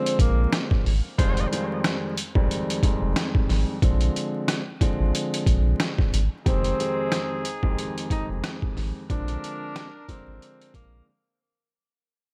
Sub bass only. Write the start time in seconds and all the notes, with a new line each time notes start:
0.19 A#1
0.86 G#1
1.19 F1
2.35 G#1
3.02 F1
3.49 G#1
3.82 A#1
5.00 G#1
5.46 A#1
6.13 G#1
6.46 F1
7.63 G#1
8.29 F1
8.77 G#1
9.10 A#1
10.27 G#1
10.74 A#1